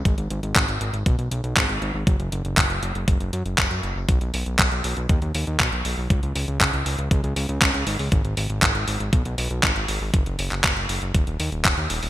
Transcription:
<<
  \new Staff \with { instrumentName = "Analog synth bass" } { \clef bass \time 4/4 \key gis \minor \tempo 4 = 119 gis,,16 gis,,16 gis,,16 gis,,16 gis,,16 gis,,16 gis,,16 gis,,16 b,,16 b,,16 b,,16 b,,16 gis,,16 gis,,16 gis,,16 gis,,16 | fis,,16 fis,,16 fis,,16 fis,,16 fis,,16 fis,,16 fis,,16 fis,,16 fis,,16 fis,,16 fis,16 fis,,16 fis,,16 fis,16 fis,,16 fis,,16 | b,,16 b,,16 b,,16 b,,16 b,,16 b,,16 b,,16 b,,16 dis,16 dis,16 dis,16 dis,16 b,,16 b,,16 b,,16 b,,16 | cis,16 cis,16 cis,16 cis,16 cis,16 cis,16 cis,16 cis,16 cis,16 cis,16 cis,16 cis,16 cis,16 cis,16 gis,,16 cis,16 |
gis,,16 gis,,16 gis,,16 gis,,16 gis,,16 gis,,16 gis,,16 gis,,16 b,,16 b,,16 b,,16 b,,16 gis,,16 gis,,16 gis,,16 gis,,16 | fis,,16 fis,,16 fis,,16 fis,,16 fis,,16 fis,,16 fis,,16 fis,,16 dis,,16 dis,,16 dis,16 dis,,16 dis,,16 dis,16 dis,,16 dis,,16 | }
  \new DrumStaff \with { instrumentName = "Drums" } \drummode { \time 4/4 <hh bd>16 hh16 hh16 hh16 <hc hh bd>16 hh16 hh16 hh16 <hh bd>16 hh16 hh16 hh16 <hc hh bd>16 hh16 hh8 | <hh bd>16 hh16 hh16 hh16 <hc hh bd>16 hh16 hh16 hh16 <hh bd>16 hh16 hh16 hh16 <hc hh bd>16 hh16 hh8 | <hh bd>16 hh16 hho16 hh16 <hc hh bd>16 hh16 hho16 hh16 <hh bd>16 hh16 hho16 hh16 <hc hh bd>16 hh16 hho8 | <hh bd>16 hh16 hho16 hh16 <hc hh bd>16 hh16 hho16 hh16 <hh bd>16 hh16 hho16 hh16 <hc hh bd>16 hh16 hho16 hho16 |
<hh bd>16 hh16 hho16 hh16 <hc hh bd>16 hh16 hho16 hh16 <hh bd>16 hh16 hho16 hh16 <hc hh bd>16 hh16 hho8 | <hh bd>16 hh16 hho16 <hc hh>16 <hc hh bd>16 hh16 hho16 hh16 <hh bd>16 hh16 hho16 hh16 <hc hh bd>16 hh16 hho16 hho16 | }
>>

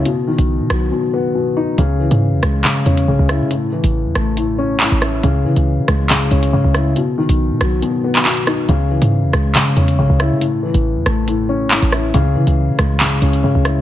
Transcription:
<<
  \new Staff \with { instrumentName = "Grand piano" } { \clef bass \time 4/4 \key cis \minor \tempo 4 = 139 b,8 dis4 fis8 b,8 b8 b,8 dis'8 | cis8 e4 gis8 cis8 cis'8 cis8 e'8 | a,8 e4 a8 a,8 cis'8 a,8 e'8 | cis8 e4 gis8 cis8 cis'8 cis8 e'8 |
b,8 dis4 fis8 b,8 b8 b,8 dis'8 | cis8 e4 gis8 cis8 cis'8 cis8 e'8 | a,8 e4 a8 a,8 cis'8 a,8 e'8 | cis8 e4 gis8 cis8 cis'8 cis8 e'8 | }
  \new Staff \with { instrumentName = "808-style bass" } { \clef bass \time 4/4 \key cis \minor r8. b,,8 b,16 b,,8 r2 | cis,8. gis,8 e,16 cis,8 r8 e,8 b,,16 cis,8 cis16 | r8. a,,8 e,16 a,,4.~ a,,16 a,,8. | cis,8 cis16 cis,8 cis16 cis,4 cis,8 gis,16 cis,8. |
r8. b,,8 b,16 b,,8 r2 | cis,8. gis,8 e,16 cis,8 r8 e,8 b,,16 cis,8 cis16 | r8. a,,8 e,16 a,,4.~ a,,16 a,,8. | cis,8 cis16 cis,8 cis16 cis,4 cis,8 gis,16 cis,8. | }
  \new DrumStaff \with { instrumentName = "Drums" } \drummode { \time 4/4 hh8. hh16 r8 <hh ss>8 r4 r4 | hh8. hh16 r8 <hh ss>8 <hc hh>8 hh16 hh16 r8 <hh ss>8 | hh8. hh16 r8 <hh ss>8 hh4 hc16 hh16 <hh ss>8 | hh8. hh16 r8 <hh ss>8 <hc hh>8 hh16 hh16 r8 <hh ss>8 |
hh8. hh16 r8 <hh ss>8 hh8. hc16 hc16 hh16 <hh ss>8 | hh8. hh16 r8 <hh ss>8 <hc hh>8 hh16 hh16 r8 <hh ss>8 | hh8. hh16 r8 <hh ss>8 hh4 hc16 hh16 <hh ss>8 | hh8. hh16 r8 <hh ss>8 <hc hh>8 hh16 hh16 r8 <hh ss>8 | }
>>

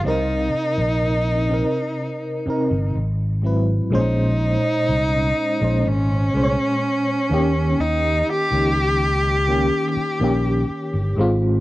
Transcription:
<<
  \new Staff \with { instrumentName = "Cello" } { \time 4/4 \key ees \mixolydian \tempo 4 = 62 ees'2. r4 | ees'2 des'2 | ees'8 g'2. r8 | }
  \new Staff \with { instrumentName = "FM electric piano" } { \time 4/4 \key ees \mixolydian <c c' ees' bes'>4~ <c c' ees' bes'>16 r16 <c c' ees' bes'>8. r16 <c c' ees' bes'>8 r8 <aes, ges c' e' b'>8 | <bes, aes des' c''>4~ <bes, aes des' c''>16 r8 <bes, aes des' c''>8 r16 <bes, aes des' c'' des''>4 <ees bes des' g'>8~ | <ees bes des' g'>8 r16 <ees bes des' ees'>8. r16 <ees bes des' g'>8 r16 <ees bes des' g'>8. r16 <aes, aes c' f'>8 | }
  \new Staff \with { instrumentName = "Fingered electric bass" } { \clef bass \time 4/4 \key ees \mixolydian c,8 r16 bes,,4 r4 g,,16 aes,,4 | bes,,8. r16 c,8 r16 bes,,16 aes,,8 c,16 r8. ees,8 | ees,8 r16 des,4~ des,16 r8 bes,,8 r16 g,,16 aes,,8 | }
>>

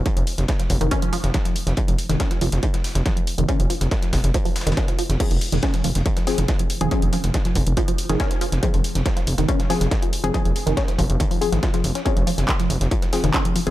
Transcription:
<<
  \new Staff \with { instrumentName = "Synth stab" } { \time 4/4 \key f \minor \tempo 4 = 140 r1 | r1 | r1 | <f c' aes'>16 r2 r16 <f c' aes'>16 r4 <f c' aes'>16 |
<f c' aes'>16 r2 r8 <f c' aes'>16 r4 | <f c' aes'>16 r2 r16 <f c' aes'>16 r4 <f c' aes'>16 | <f c' aes'>16 r2 r16 <f c' aes'>16 r4 r16 | <f c' aes'>16 r2 r16 <f c' aes'>16 r4 <f c' aes'>16 | }
  \new Staff \with { instrumentName = "Synth arpeggio sound" } { \clef bass \time 4/4 \key f \minor ees16 f16 r8 f16 f16 r16 ees16 des'16 f16 f16 r16 ees16 f16 r8 | f16 f16 r16 ees16 des'16 f16 f16 r16 ees16 f16 r8 f16 f16 r16 ees16 | des'16 f16 f16 r16 ees16 f16 r8 f16 f16 r16 ees16 des'16 f16 f16 r16 | f16 f16 r16 ees16 des'16 f16 f16 r16 ees16 f16 r8 f16 f16 r16 ees16 |
des'16 f16 f16 r16 ees16 f16 r8 f16 f16 r16 ees16 des'16 f16 f16 r16 | ees16 f16 r8 f16 f16 r16 ees16 des'16 f16 f16 r16 ees16 f16 r8 | f16 f16 r16 ees16 des'16 f16 f16 r16 ees16 f16 r16 f16 f'16 f16 r16 des'16 | des'16 f16 f16 r16 ees16 f16 r8 f16 f16 r16 ees16 des'16 f16 f16 r16 | }
  \new Staff \with { instrumentName = "Analog synth bass" } { \clef bass \time 4/4 \key f \minor r16 f,,16 r16 f,,16 r8 f,,16 f,,16 r8. f,,16 r8. f,,16 | r16 f,,16 r16 f,,16 r8 f,,16 f,,16 r8. f,,16 r8. f,,16 | r16 f,,16 r16 f,,16 r8 f,,16 f,,16 r8. f,,16 r8. f,,16 | r16 f,,16 r16 f,,16 r8 f,,16 f,,16 r8. f,,16 r8. f,,16 |
r16 f,,16 r16 f,,16 r8 f,,16 f,,16 r8. f,,16 r8. f,,16 | r16 f,,16 r16 f,,16 r8 f,,16 f,,16 r8. f,,16 r8. f,,16 | r16 f,,16 r16 f,,16 r8 f,,16 f,,16 r8. aes,,16 r8 f,,16 r16 | r16 f,,16 r16 f,,16 r8 f,,16 f,,16 r8. f,,16 r8. f,,16 | }
  \new DrumStaff \with { instrumentName = "Drums" } \drummode { \time 4/4 <hh bd>16 hh16 <hh hho>16 <hh sn>16 <hh bd sn>16 <hh sn>16 <hh hho bd>16 hh16 <hh bd>16 hh16 <hh hho>16 <hh sn>16 <hh bd sn>16 <hh sn>16 <hh hho>16 <hh sn>16 | <hh bd>16 hh16 <hh hho>16 <hh sn>16 <hh bd sn>16 <hh sn>16 <hh hho>16 <hh sn>16 <hh bd>16 <hh sn>16 <hh hho sn>16 <hh sn>16 <hh bd sn>16 hh16 <hh hho>16 hh16 | <hh bd>16 hh16 <hh hho>16 <hh sn>16 <hh bd sn>16 <hh sn>16 <hh hho bd sn>16 <hh sn>16 <hh bd>16 hho16 <hh hho sn>32 <hh sn>32 <hh sn>32 <hh sn>32 <hh bd sn>16 <hh sn>16 <hh hho>16 <hh sn>16 | <cymc hh bd>16 hh16 <hh hho>16 <hh sn>16 <hh bd sn>16 <hh sn>16 <hh hho>16 <hh sn>16 <hh bd>16 <hh sn>16 <hh hho sn>16 <hh sn>16 <hh bd sn>16 hh16 <hh hho>16 hh16 |
<hh bd>16 hh16 <hh hho>16 <hh sn>16 <hh bd sn>16 <hh sn>16 <hh hho bd>16 hh16 <hh bd>16 hh16 <hh hho>16 <hh sn>16 <hh bd sn>16 <hh sn>16 <hh hho>16 <hh sn>16 | <hh bd>16 hh16 <hh hho>16 <hh sn>16 <hh bd sn>16 <hh sn>16 <hh hho>16 <hh sn>16 <hh bd>16 <hh sn>16 <hh hho sn>16 <hh sn>16 <hh bd sn>16 hh16 <hh hho>16 hh16 | <hh bd>16 hh16 <hh hho>16 <hh sn>16 <hh bd sn>16 <hh sn>16 <hh hho bd>16 hh16 <hh bd>16 hho16 <hh hho>16 <hh sn>16 <hh bd sn>16 <hh sn>16 <hh hho>16 <hh sn>16 | <hh bd>16 hh16 <hh hho>16 <hh sn>16 <hc hh bd sn>16 <hh sn>16 <hh hho>16 <hh sn>16 <hh bd>16 <hh sn>16 <hh hho sn>16 <hh sn>16 <hc hh bd sn>16 hh16 <hh hho>16 hh16 | }
>>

